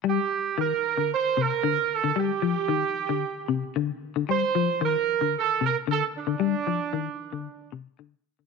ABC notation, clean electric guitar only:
X:1
M:4/4
L:1/16
Q:1/4=113
K:Cdor
V:1 name="Clean electric guitar" clef=bass
G,2 z2 E,2 z D,2 z C,2 D,2 z D, | G,2 F,2 E,2 z D,2 z C,2 D,2 z D, | G,2 F,2 E,2 z D,2 z C,2 D,2 z D, | G,2 F,2 E,2 z D,2 z C,2 D,2 z D, |]